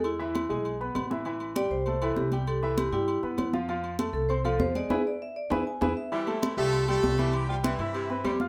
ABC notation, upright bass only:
X:1
M:4/4
L:1/8
Q:1/4=198
K:Am
V:1 name="Upright bass" clef=bass
E,,3 B,,,3 A,,,2- | A,,,3 C,,3 C,,2- | C,,3 G,,2 G,, F,,2- | F,,3 C,,3 E,,2 |
E,, z3 E,, z E,, z | z3 C,,3 C,,2- | C,,3 G,,3 F,,2 |]